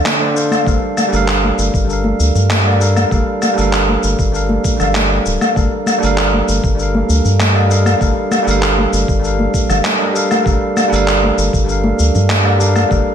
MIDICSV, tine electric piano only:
0, 0, Header, 1, 2, 480
1, 0, Start_track
1, 0, Key_signature, -2, "minor"
1, 0, Tempo, 612245
1, 521, Time_signature, 4, 2, 24, 8
1, 10306, End_track
2, 0, Start_track
2, 0, Title_t, "Tine electric piano"
2, 0, Program_c, 0, 4
2, 0, Control_c, 0, 64, 127
2, 0, Note_on_c, 0, 50, 73
2, 0, Note_on_c, 0, 62, 65
2, 0, Note_on_c, 0, 69, 68
2, 0, Note_on_c, 0, 72, 64
2, 0, Note_on_c, 0, 77, 76
2, 124, Note_off_c, 0, 50, 0
2, 132, Note_off_c, 0, 62, 0
2, 140, Note_off_c, 0, 69, 0
2, 145, Note_on_c, 0, 50, 73
2, 147, Note_off_c, 0, 72, 0
2, 153, Note_on_c, 0, 62, 61
2, 156, Note_off_c, 0, 77, 0
2, 161, Note_on_c, 0, 69, 60
2, 167, Note_on_c, 0, 72, 68
2, 176, Note_on_c, 0, 74, 78
2, 244, Note_off_c, 0, 50, 0
2, 248, Note_off_c, 0, 62, 0
2, 252, Note_off_c, 0, 69, 0
2, 255, Note_off_c, 0, 72, 0
2, 259, Note_off_c, 0, 74, 0
2, 262, Note_on_c, 0, 50, 75
2, 268, Note_on_c, 0, 62, 69
2, 277, Note_on_c, 0, 69, 68
2, 284, Note_on_c, 0, 72, 69
2, 293, Note_on_c, 0, 77, 81
2, 483, Note_off_c, 0, 50, 0
2, 486, Note_off_c, 0, 62, 0
2, 491, Note_off_c, 0, 69, 0
2, 494, Note_off_c, 0, 72, 0
2, 498, Note_off_c, 0, 77, 0
2, 501, Note_on_c, 0, 55, 74
2, 509, Note_on_c, 0, 62, 68
2, 517, Note_on_c, 0, 69, 67
2, 525, Note_on_c, 0, 70, 68
2, 531, Note_on_c, 0, 77, 81
2, 533, Control_c, 0, 64, 0
2, 673, Control_c, 0, 64, 127
2, 840, Note_off_c, 0, 55, 0
2, 848, Note_off_c, 0, 62, 0
2, 850, Note_on_c, 0, 55, 93
2, 852, Note_off_c, 0, 69, 0
2, 856, Note_off_c, 0, 70, 0
2, 859, Note_off_c, 0, 77, 0
2, 865, Note_on_c, 0, 62, 80
2, 880, Note_on_c, 0, 69, 84
2, 895, Note_on_c, 0, 70, 81
2, 913, Note_on_c, 0, 77, 100
2, 1436, Note_off_c, 0, 55, 0
2, 1443, Note_off_c, 0, 62, 0
2, 1450, Note_on_c, 0, 55, 70
2, 1451, Note_off_c, 0, 69, 0
2, 1459, Note_off_c, 0, 70, 0
2, 1466, Note_on_c, 0, 62, 64
2, 1468, Note_off_c, 0, 77, 0
2, 1481, Note_on_c, 0, 69, 69
2, 1495, Note_on_c, 0, 70, 67
2, 1512, Note_on_c, 0, 77, 80
2, 2043, Note_off_c, 0, 55, 0
2, 2051, Note_off_c, 0, 62, 0
2, 2059, Note_off_c, 0, 69, 0
2, 2066, Note_off_c, 0, 70, 0
2, 2068, Note_on_c, 0, 55, 73
2, 2074, Note_off_c, 0, 77, 0
2, 2075, Note_on_c, 0, 62, 62
2, 2083, Note_on_c, 0, 69, 62
2, 2091, Note_on_c, 0, 70, 68
2, 2098, Note_on_c, 0, 74, 74
2, 2165, Note_off_c, 0, 55, 0
2, 2169, Note_off_c, 0, 62, 0
2, 2173, Note_off_c, 0, 69, 0
2, 2177, Note_off_c, 0, 70, 0
2, 2180, Note_off_c, 0, 74, 0
2, 2187, Note_on_c, 0, 55, 73
2, 2195, Note_on_c, 0, 62, 70
2, 2204, Note_on_c, 0, 69, 67
2, 2212, Note_on_c, 0, 70, 65
2, 2218, Note_on_c, 0, 77, 80
2, 2406, Note_off_c, 0, 55, 0
2, 2410, Note_off_c, 0, 62, 0
2, 2414, Note_off_c, 0, 69, 0
2, 2418, Note_off_c, 0, 70, 0
2, 2421, Note_off_c, 0, 77, 0
2, 2431, Note_on_c, 0, 55, 68
2, 2439, Note_on_c, 0, 62, 67
2, 2444, Note_on_c, 0, 69, 65
2, 2453, Note_on_c, 0, 70, 69
2, 2461, Note_on_c, 0, 77, 79
2, 2764, Note_off_c, 0, 55, 0
2, 2773, Note_off_c, 0, 62, 0
2, 2774, Note_on_c, 0, 55, 88
2, 2775, Note_off_c, 0, 69, 0
2, 2780, Note_off_c, 0, 70, 0
2, 2784, Note_off_c, 0, 77, 0
2, 2789, Note_on_c, 0, 62, 78
2, 2805, Note_on_c, 0, 69, 80
2, 2819, Note_on_c, 0, 70, 83
2, 2834, Note_on_c, 0, 77, 95
2, 3358, Note_off_c, 0, 55, 0
2, 3366, Note_off_c, 0, 62, 0
2, 3374, Note_off_c, 0, 69, 0
2, 3381, Note_off_c, 0, 70, 0
2, 3388, Note_off_c, 0, 77, 0
2, 3388, Note_on_c, 0, 55, 73
2, 3396, Note_on_c, 0, 62, 65
2, 3404, Note_on_c, 0, 69, 63
2, 3412, Note_on_c, 0, 70, 65
2, 3418, Note_on_c, 0, 77, 79
2, 3726, Note_off_c, 0, 55, 0
2, 3735, Note_on_c, 0, 55, 69
2, 3736, Note_off_c, 0, 62, 0
2, 3740, Note_off_c, 0, 69, 0
2, 3744, Note_off_c, 0, 70, 0
2, 3747, Note_off_c, 0, 77, 0
2, 3750, Note_on_c, 0, 62, 63
2, 3765, Note_on_c, 0, 69, 63
2, 3782, Note_on_c, 0, 70, 62
2, 3797, Note_on_c, 0, 77, 78
2, 4319, Note_off_c, 0, 55, 0
2, 4326, Note_off_c, 0, 62, 0
2, 4334, Note_off_c, 0, 69, 0
2, 4342, Note_off_c, 0, 70, 0
2, 4348, Note_on_c, 0, 55, 73
2, 4349, Note_off_c, 0, 77, 0
2, 4356, Note_on_c, 0, 62, 63
2, 4364, Note_on_c, 0, 69, 67
2, 4370, Note_on_c, 0, 70, 62
2, 4371, Control_c, 0, 64, 0
2, 4379, Note_on_c, 0, 77, 76
2, 4488, Control_c, 0, 64, 127
2, 4683, Note_off_c, 0, 55, 0
2, 4691, Note_off_c, 0, 62, 0
2, 4693, Note_on_c, 0, 55, 87
2, 4695, Note_off_c, 0, 69, 0
2, 4698, Note_off_c, 0, 70, 0
2, 4703, Note_off_c, 0, 77, 0
2, 4708, Note_on_c, 0, 62, 82
2, 4724, Note_on_c, 0, 69, 80
2, 4740, Note_on_c, 0, 70, 86
2, 4755, Note_on_c, 0, 77, 100
2, 5278, Note_off_c, 0, 55, 0
2, 5285, Note_off_c, 0, 62, 0
2, 5291, Note_on_c, 0, 55, 73
2, 5293, Note_off_c, 0, 69, 0
2, 5301, Note_off_c, 0, 70, 0
2, 5306, Note_on_c, 0, 62, 65
2, 5309, Note_off_c, 0, 77, 0
2, 5323, Note_on_c, 0, 69, 68
2, 5338, Note_on_c, 0, 70, 67
2, 5353, Note_on_c, 0, 77, 81
2, 5883, Note_off_c, 0, 55, 0
2, 5891, Note_off_c, 0, 62, 0
2, 5900, Note_off_c, 0, 69, 0
2, 5905, Note_on_c, 0, 55, 72
2, 5907, Note_off_c, 0, 70, 0
2, 5913, Note_on_c, 0, 62, 64
2, 5915, Note_off_c, 0, 77, 0
2, 5920, Note_on_c, 0, 69, 63
2, 5928, Note_on_c, 0, 70, 67
2, 5935, Note_on_c, 0, 75, 74
2, 6003, Note_off_c, 0, 55, 0
2, 6007, Note_off_c, 0, 62, 0
2, 6011, Note_off_c, 0, 69, 0
2, 6015, Note_off_c, 0, 70, 0
2, 6019, Note_off_c, 0, 75, 0
2, 6022, Note_on_c, 0, 55, 74
2, 6030, Note_on_c, 0, 62, 66
2, 6038, Note_on_c, 0, 69, 67
2, 6045, Note_on_c, 0, 70, 70
2, 6054, Note_on_c, 0, 77, 88
2, 6243, Note_off_c, 0, 55, 0
2, 6247, Note_off_c, 0, 62, 0
2, 6251, Note_off_c, 0, 69, 0
2, 6255, Note_off_c, 0, 70, 0
2, 6259, Note_off_c, 0, 77, 0
2, 6263, Note_on_c, 0, 55, 75
2, 6270, Note_on_c, 0, 62, 67
2, 6278, Note_on_c, 0, 69, 62
2, 6286, Note_on_c, 0, 70, 64
2, 6294, Note_on_c, 0, 77, 79
2, 6598, Note_off_c, 0, 55, 0
2, 6608, Note_off_c, 0, 62, 0
2, 6608, Note_on_c, 0, 55, 88
2, 6612, Note_off_c, 0, 69, 0
2, 6616, Note_off_c, 0, 70, 0
2, 6620, Note_off_c, 0, 77, 0
2, 6623, Note_on_c, 0, 62, 81
2, 6640, Note_on_c, 0, 69, 85
2, 6654, Note_on_c, 0, 70, 83
2, 6670, Note_on_c, 0, 77, 105
2, 7195, Note_off_c, 0, 55, 0
2, 7203, Note_off_c, 0, 62, 0
2, 7207, Note_on_c, 0, 55, 71
2, 7211, Note_off_c, 0, 69, 0
2, 7218, Note_off_c, 0, 70, 0
2, 7222, Note_on_c, 0, 62, 63
2, 7226, Note_off_c, 0, 77, 0
2, 7238, Note_on_c, 0, 69, 64
2, 7256, Note_on_c, 0, 70, 68
2, 7270, Note_on_c, 0, 77, 78
2, 7802, Note_off_c, 0, 55, 0
2, 7809, Note_off_c, 0, 62, 0
2, 7817, Note_off_c, 0, 69, 0
2, 7825, Note_on_c, 0, 55, 71
2, 7826, Note_off_c, 0, 70, 0
2, 7833, Note_off_c, 0, 77, 0
2, 7833, Note_on_c, 0, 62, 65
2, 7839, Note_on_c, 0, 69, 66
2, 7849, Note_on_c, 0, 70, 68
2, 7856, Note_on_c, 0, 75, 77
2, 7924, Note_off_c, 0, 55, 0
2, 7928, Note_off_c, 0, 62, 0
2, 7931, Note_off_c, 0, 69, 0
2, 7936, Note_off_c, 0, 70, 0
2, 7939, Note_off_c, 0, 75, 0
2, 7945, Note_on_c, 0, 55, 77
2, 7954, Note_on_c, 0, 62, 69
2, 7960, Note_on_c, 0, 69, 70
2, 7968, Note_on_c, 0, 70, 70
2, 7972, Control_c, 0, 64, 0
2, 7975, Note_on_c, 0, 77, 87
2, 8103, Control_c, 0, 64, 127
2, 8165, Note_off_c, 0, 55, 0
2, 8169, Note_off_c, 0, 62, 0
2, 8172, Note_off_c, 0, 69, 0
2, 8176, Note_off_c, 0, 70, 0
2, 8180, Note_off_c, 0, 77, 0
2, 8183, Note_on_c, 0, 55, 75
2, 8190, Note_on_c, 0, 62, 69
2, 8199, Note_on_c, 0, 69, 65
2, 8207, Note_on_c, 0, 70, 70
2, 8215, Note_on_c, 0, 77, 80
2, 8520, Note_off_c, 0, 55, 0
2, 8528, Note_off_c, 0, 62, 0
2, 8530, Note_on_c, 0, 55, 86
2, 8533, Note_off_c, 0, 69, 0
2, 8537, Note_off_c, 0, 70, 0
2, 8541, Note_off_c, 0, 77, 0
2, 8544, Note_on_c, 0, 62, 90
2, 8562, Note_on_c, 0, 69, 85
2, 8576, Note_on_c, 0, 70, 89
2, 8591, Note_on_c, 0, 77, 102
2, 9116, Note_off_c, 0, 55, 0
2, 9123, Note_off_c, 0, 62, 0
2, 9128, Note_on_c, 0, 55, 73
2, 9132, Note_off_c, 0, 69, 0
2, 9139, Note_off_c, 0, 70, 0
2, 9144, Note_on_c, 0, 62, 65
2, 9147, Note_off_c, 0, 77, 0
2, 9159, Note_on_c, 0, 69, 67
2, 9174, Note_on_c, 0, 70, 65
2, 9191, Note_on_c, 0, 77, 76
2, 9722, Note_off_c, 0, 55, 0
2, 9730, Note_off_c, 0, 62, 0
2, 9738, Note_off_c, 0, 69, 0
2, 9745, Note_off_c, 0, 70, 0
2, 9746, Note_on_c, 0, 55, 72
2, 9753, Note_on_c, 0, 62, 68
2, 9754, Note_off_c, 0, 77, 0
2, 9760, Note_on_c, 0, 69, 69
2, 9769, Note_on_c, 0, 70, 68
2, 9777, Note_on_c, 0, 74, 78
2, 9844, Note_off_c, 0, 55, 0
2, 9848, Note_off_c, 0, 62, 0
2, 9851, Note_off_c, 0, 69, 0
2, 9856, Note_off_c, 0, 70, 0
2, 9860, Note_off_c, 0, 74, 0
2, 9864, Note_on_c, 0, 55, 78
2, 9871, Note_on_c, 0, 62, 76
2, 9879, Note_on_c, 0, 69, 72
2, 9886, Note_on_c, 0, 70, 70
2, 9895, Note_on_c, 0, 77, 89
2, 10084, Note_off_c, 0, 55, 0
2, 10088, Note_off_c, 0, 62, 0
2, 10092, Note_off_c, 0, 69, 0
2, 10095, Note_off_c, 0, 70, 0
2, 10100, Note_off_c, 0, 77, 0
2, 10103, Note_on_c, 0, 55, 74
2, 10112, Note_on_c, 0, 62, 65
2, 10118, Note_on_c, 0, 69, 69
2, 10127, Note_on_c, 0, 70, 67
2, 10134, Note_on_c, 0, 77, 79
2, 10306, Note_off_c, 0, 55, 0
2, 10306, Note_off_c, 0, 62, 0
2, 10306, Note_off_c, 0, 69, 0
2, 10306, Note_off_c, 0, 70, 0
2, 10306, Note_off_c, 0, 77, 0
2, 10306, End_track
0, 0, End_of_file